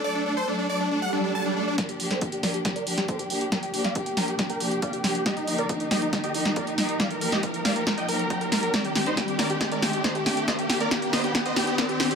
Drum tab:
HH |----------------|xxoxxxoxxxoxxxox|xxoxxxoxxxoxxxox|xxoxxxoxxxoxxxox|
SD |----------------|o--o--o-o--o----|o--o--o-o-----o-|o-----o-o--o--o-|
BD |----------------|o---o-o-o---o---|o---o---o---o---|o---o-o-o---o---|

HH |xxoxxxoxxxoxxxox|xxoxxxoxxxoxxxox|xxoxxxoxxxoxxxox|
SD |o--o--o-o-----o-|o-o-o-o-o-o-o-o-|o-o-o-o-o-o-o-o-|
BD |o---o---o---o---|o---o-o-o---o---|o---o---o---o---|